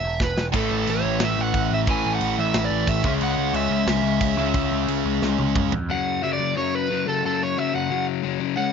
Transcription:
0.00 0.20 E1 loud
0.00 0.22 E5 loud
0.20 0.36 E1 medium
0.20 0.45 B4 loud
0.20 kick medium
0.20 snare medium
0.37 0.53 E1 medium
0.37 snare loud
0.53 0.70 A1 medium
0.53 1.86 A2 loud
0.53 1.88 E3 loud
0.53 1.88 A3 loud
0.53 0.89 A4 loud
0.53 kick loud
0.53 crash medium
0.71 0.87 A1 medium
0.87 1.03 A1 medium
0.87 1.23 C#5 medium
0.87 crash medium
1.04 1.20 A1 loud
1.20 1.37 A1 medium
1.20 1.41 E5 loud
1.20 snare loud
1.20 crash medium
1.38 1.54 A1 loud
1.38 1.74 F#5 loud
1.54 1.70 A1 medium
1.54 kick medium
1.54 crash medium
1.72 1.87 A1 loud
1.72 1.79 E5 medium
1.87 2.04 A1 medium
1.87 3.03 A2 loud
1.87 3.04 E3 loud
1.87 3.05 A3 loud
1.87 2.14 G#5 loud
1.87 kick loud
1.87 crash medium
2.05 2.21 A1 medium
2.15 2.40 F#5 loud
2.21 2.37 A1 medium
2.21 crash medium
2.38 2.54 A1 medium
2.38 2.65 E5 loud
2.54 2.70 A1 medium
2.54 snare loud
2.54 crash medium
2.65 2.90 D5 medium
2.70 2.87 A1 medium
2.87 3.04 A1 medium
2.87 3.12 E5 loud
2.87 kick medium
2.87 crash medium
3.03 3.21 C#2 medium
3.03 4.35 C#3 medium
3.03 4.37 G#3 loud
3.03 4.39 C#4 loud
3.03 kick loud
3.21 3.37 C#2 medium
3.21 3.56 F#5 loud
3.21 crash medium
3.38 3.53 C#2 loud
3.53 3.69 C#2 medium
3.53 3.71 E5 loud
3.53 crash medium
3.70 3.86 C#2 medium
3.70 5.52 E5 medium
3.87 4.03 C#2 loud
3.87 snare loud
3.87 crash medium
4.03 4.20 C#2 medium
4.21 4.36 C#2 medium
4.21 kick medium
4.21 crash medium
4.37 4.53 C#2 loud
4.37 5.70 C#3 medium
4.37 5.71 G#3 loud
4.37 5.72 C#4 loud
4.54 4.71 C#2 loud
4.54 kick loud
4.54 crash medium
4.72 4.87 C#2 loud
4.88 5.04 C#2 loud
4.88 crash medium
5.05 5.21 C#2 medium
5.22 5.38 C#2 loud
5.22 snare medium
5.38 5.55 C#2 medium
5.38 high tom medium
5.55 5.72 C#2 medium
5.55 kick medium
5.55 mid tom loud
5.72 5.89 F2 medium
5.72 floor tom medium
5.89 6.22 F#2 loud
5.89 6.22 C#3 loud
5.89 6.23 F#3 loud
5.89 6.21 F#5 loud
6.22 6.40 F#2 medium
6.22 6.38 C#3 loud
6.22 6.39 F#3 loud
6.22 6.32 E5 loud
6.33 6.57 D5 loud
6.39 6.54 F#2 medium
6.39 6.55 C#3 loud
6.39 6.55 F#3 loud
6.55 6.88 F#2 loud
6.55 6.89 C#3 loud
6.55 6.89 F#3 loud
6.55 6.74 C#5 loud
6.75 7.08 B4 loud
6.89 7.05 F#2 medium
6.89 7.05 C#3 medium
6.89 7.05 F#3 loud
7.06 7.22 F#2 medium
7.06 7.22 C#3 loud
7.06 7.23 F#3 loud
7.06 7.25 A4 medium
7.23 7.55 F#2 loud
7.23 7.56 C#3 loud
7.23 7.56 F#3 loud
7.23 7.42 A4 medium
7.43 7.58 C#5 medium
7.56 7.73 F#2 medium
7.56 7.72 C#3 medium
7.56 7.72 F#3 loud
7.56 7.75 E5 loud
7.73 7.89 F#2 medium
7.73 7.89 C#3 medium
7.73 7.90 F#3 loud
7.73 8.05 F#5 loud
7.90 8.22 F#2 medium
7.90 8.22 C#3 loud
7.90 8.23 F#3 loud
8.23 8.40 F#2 loud
8.23 8.39 C#3 loud
8.23 8.38 F#3 loud
8.40 8.56 F#2 medium
8.40 8.55 C#3 loud
8.40 8.55 F#3 loud
8.56 8.73 C#3 loud
8.56 8.73 G#3 loud
8.56 8.73 C#4 loud
8.56 8.73 F#5 loud

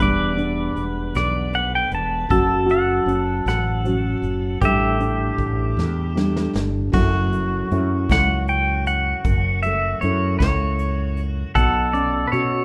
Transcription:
0.00 0.68 E1 medium
0.00 1.52 E2 medium
0.00 2.25 G3 medium
0.00 0.75 B3 medium
0.00 0.36 D4 medium
0.00 2.38 B4 medium
0.00 0.84 D5 medium
0.37 2.31 D4 medium
0.37 closed hi-hat soft
0.76 1.11 E1 medium
0.76 2.26 B3 soft
0.76 closed hi-hat soft
1.15 1.84 B1 medium
1.15 1.55 D5 medium
1.15 cross-stick medium
1.15 closed hi-hat medium
1.53 1.91 D2 medium
1.53 1.74 F#5 medium
1.53 closed hi-hat soft
1.75 1.94 G5 medium
1.91 2.26 E1 medium
1.91 2.28 E2 medium
1.91 2.66 A5 medium
1.91 closed hi-hat soft
2.29 2.99 F#1 medium
2.29 4.56 F#2 medium
2.29 3.84 F#3 medium
2.29 3.05 C#4 medium
2.29 2.65 F#4 medium
2.29 4.69 A4 medium
2.29 kick medium
2.29 closed hi-hat medium
2.66 3.83 F#4 medium
2.66 closed hi-hat soft
2.71 3.47 F#5 medium
3.06 3.41 F#1 medium
3.06 3.84 C#4 soft
3.06 closed hi-hat soft
3.46 4.15 A1 medium
3.46 4.59 F#5 medium
3.46 cross-stick medium
3.46 closed hi-hat medium
3.85 4.61 F#3 medium
3.85 4.58 C#4 medium
3.85 4.58 F#4 medium
3.85 closed hi-hat soft
4.22 4.57 F#1 medium
4.22 closed hi-hat soft
4.61 5.31 A1 medium
4.61 6.94 A2 medium
4.61 6.14 G3 medium
4.61 5.37 A3 medium
4.61 4.99 D4 medium
4.61 6.51 G4 medium
4.61 6.53 E5 medium
4.61 kick medium
4.61 closed hi-hat medium
5.00 6.16 D4 medium
5.00 closed hi-hat soft
5.38 5.73 A1 medium
5.38 6.14 A3 medium
5.38 kick medium
5.38 closed hi-hat soft
5.77 6.46 E2 medium
5.77 snare soft
6.15 6.89 G3 medium
6.15 6.92 A3 medium
6.15 6.94 D4 medium
6.15 snare medium
6.37 snare medium
6.55 6.90 G1 medium
6.55 snare medium
6.92 7.63 F#1 medium
6.92 9.20 F#2 medium
6.92 10.07 F#3 medium
6.92 7.33 A3 medium
6.92 7.71 C#4 medium
6.92 7.72 E4 medium
6.92 11.52 F#4 medium
6.92 kick medium
6.92 crash medium
7.32 7.71 A3 medium
7.32 closed hi-hat soft
7.71 8.06 F#2 medium
7.71 9.21 A3 medium
7.71 10.03 C#4 medium
7.71 9.21 E4 medium
7.71 closed hi-hat soft
8.09 9.13 C#2 medium
8.09 8.49 F#5 medium
8.09 kick medium
8.09 snare medium
8.09 closed hi-hat medium
8.48 8.87 G5 medium
8.48 closed hi-hat soft
8.86 9.62 F#5 medium
8.86 closed hi-hat medium
9.24 9.94 F#1 medium
9.24 11.51 F#2 medium
9.24 kick medium
9.24 closed hi-hat medium
9.63 10.02 A3 medium
9.63 10.03 E5 medium
9.63 closed hi-hat medium
10.01 10.37 F#2 medium
10.01 11.51 A3 medium
10.01 11.58 C#4 medium
10.01 11.52 E4 medium
10.01 10.38 C#5 medium
10.01 closed hi-hat soft
10.39 11.43 C#2 loud
10.39 11.22 C#5 medium
10.39 kick medium
10.39 snare medium
10.39 closed hi-hat medium
10.79 closed hi-hat medium
11.17 closed hi-hat soft
11.55 12.24 B1 medium
11.55 12.65 B2 medium
11.55 12.65 A4 loud
11.55 11.95 F#5 medium
11.55 kick medium
11.55 closed hi-hat medium
11.93 12.32 C#4 medium
11.93 12.26 D5 medium
11.93 closed hi-hat soft
12.27 12.33 B4 medium
12.32 12.65 B2 medium
12.32 12.65 C#4 medium
12.32 12.65 F#4 medium
12.32 12.65 C#5 medium
12.32 closed hi-hat soft

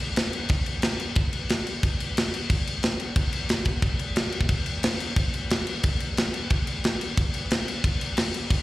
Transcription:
0.16 snare loud
0.16 crash medium
0.33 crash medium
0.49 kick loud
0.49 crash medium
0.66 crash medium
0.82 snare loud
0.82 crash medium
1.00 crash medium
1.15 kick loud
1.15 crash medium
1.33 crash medium
1.49 snare loud
1.49 crash medium
1.67 crash medium
1.83 kick loud
1.83 crash medium
2.00 crash medium
2.17 snare loud
2.17 crash loud
2.34 crash medium
2.50 kick loud
2.50 crash medium
2.67 crash medium
2.83 snare loud
2.83 crash medium
3.00 crash medium
3.16 kick loud
3.16 crash medium
3.33 crash medium
3.49 snare loud
3.49 crash medium
3.65 kick medium
3.65 crash medium
3.82 kick loud
3.82 crash medium
3.99 crash medium
4.16 snare loud
4.16 crash medium
4.32 crash medium
4.41 kick medium
4.49 kick medium
4.49 crash medium
4.66 crash medium
4.83 snare loud
4.83 crash medium
5.00 crash medium
5.16 kick loud
5.16 crash medium
5.34 crash medium
5.50 snare loud
5.50 crash medium
5.67 crash medium
5.83 kick loud
5.83 crash medium
6.00 crash medium
6.17 snare loud
6.17 crash medium
6.34 crash medium
6.50 kick loud
6.50 crash medium
6.67 crash medium
6.84 snare loud
6.84 crash medium
7.01 crash medium
7.17 kick loud
7.17 crash medium
7.34 crash medium
7.51 snare loud
7.51 crash medium
7.68 crash medium
7.84 kick loud
7.84 crash medium
8.01 crash medium
8.17 snare loud
8.17 crash loud
8.34 crash medium
8.50 kick loud
8.50 crash medium

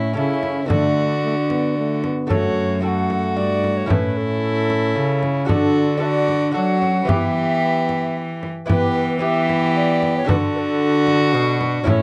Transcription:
0.00 0.13 A2 medium
0.00 0.18 A2 medium
0.00 0.12 C#4 soft
0.00 0.15 C#4 medium
0.00 0.12 E4 soft
0.00 0.15 E4 medium
0.00 0.13 A4 soft
0.00 0.16 E5 medium
0.13 0.69 C#3 medium
0.13 0.66 C#3 soft
0.13 0.66 C#4 soft
0.13 0.72 C#4 medium
0.13 0.67 E4 soft
0.13 0.68 A4 soft
0.13 0.71 E5 medium
0.18 0.69 E4 medium
0.43 frame drum soft
0.66 2.07 D3 medium
0.66 2.06 D3 soft
0.66 2.25 A3 soft
0.66 2.25 F#4 soft
0.66 2.26 A4 soft
0.66 2.03 D5 medium
0.66 frame drum medium
0.71 1.18 A3 medium
0.71 2.08 F#4 medium
1.24 1.36 A3 medium
1.50 1.76 B3 medium
1.50 frame drum soft
1.77 2.06 A3 medium
2.04 2.31 B3 medium
2.04 frame drum soft
2.27 3.39 F#2 medium
2.27 2.79 A3 soft
2.27 2.81 F#4 soft
2.27 2.80 F#4 medium
2.27 2.82 A4 soft
2.27 2.80 C#5 medium
2.27 frame drum medium
2.31 3.33 F#2 soft
2.31 2.81 A3 medium
2.81 3.85 A3 soft
2.81 3.88 A3 medium
2.81 3.86 F#4 soft
2.81 3.92 F#4 medium
2.81 3.86 A4 soft
2.81 2.89 G5 medium
2.88 3.38 F#5 medium
3.10 frame drum soft
3.37 3.86 G2 soft
3.37 3.90 G2 medium
3.37 3.79 D5 medium
3.64 frame drum soft
3.77 3.90 C#5 medium
3.86 4.92 A2 soft
3.86 5.42 C#4 soft
3.86 5.45 C#4 medium
3.86 5.43 E4 soft
3.86 5.44 A4 soft
3.90 4.97 A2 medium
3.90 5.47 E4 medium
3.90 4.19 B4 medium
3.90 frame drum medium
4.17 5.22 A4 medium
4.70 frame drum soft
4.95 5.50 C#3 medium
4.95 5.44 C#3 soft
5.23 frame drum soft
5.45 6.56 D3 medium
5.45 6.51 D3 medium
5.45 5.96 D4 soft
5.45 6.00 D4 medium
5.45 5.97 F#4 soft
5.45 6.00 F#4 medium
5.45 5.99 A4 soft
5.45 6.03 A4 medium
5.49 frame drum medium
5.97 6.50 D4 soft
5.97 6.51 F#4 soft
5.97 6.53 F#4 medium
5.97 6.52 A4 soft
6.01 6.53 D4 medium
6.01 6.53 D5 medium
6.01 6.06 E5 medium
6.29 frame drum soft
6.51 7.08 F#3 medium
6.51 7.04 F#3 soft
6.51 7.05 D4 soft
6.51 6.83 D4 medium
6.51 7.05 F#4 soft
6.51 7.10 F#4 medium
6.51 7.06 A4 soft
6.51 7.11 F#5 medium
6.81 7.09 C#4 soft
6.81 frame drum soft
7.05 8.46 E3 medium
7.05 8.45 E3 soft
7.05 8.64 B3 soft
7.05 8.42 B3 soft
7.05 8.64 E4 soft
7.05 8.65 G4 soft
7.05 8.49 G4 medium
7.05 8.16 E5 medium
7.05 frame drum medium
7.89 frame drum soft
8.43 frame drum soft
8.66 10.25 E3 medium
8.66 9.18 B3 soft
8.66 9.19 B3 medium
8.66 9.19 E4 medium
8.66 9.20 G4 soft
8.66 9.19 G4 medium
8.66 9.19 B4 medium
8.66 frame drum medium
9.19 10.24 B3 soft
9.19 10.31 B3 medium
9.19 10.24 E4 soft
9.19 10.25 G4 soft
9.19 10.31 G4 medium
9.19 9.74 E5 medium
9.49 frame drum soft
9.76 10.15 D5 medium
10.03 frame drum soft
10.17 10.29 C#5 medium
10.25 11.30 D3 medium
10.25 11.81 D4 medium
10.25 11.82 F#4 medium
10.25 11.83 A4 medium
10.29 11.36 D3 medium
10.29 11.88 D4 medium
10.29 11.89 F#4 medium
10.29 10.35 B4 medium
10.29 frame drum medium
10.55 11.59 A4 medium
10.55 10.59 B4 medium
11.07 frame drum soft
11.34 11.83 B2 medium
11.34 11.87 B2 medium
11.61 frame drum medium
11.84 12.02 A2 medium
11.84 12.02 C#4 medium
11.84 12.02 E4 medium
11.84 12.02 A4 medium
11.84 12.02 C#5 loud
11.84 frame drum medium
11.88 12.02 C#4 medium
11.88 12.02 E4 medium

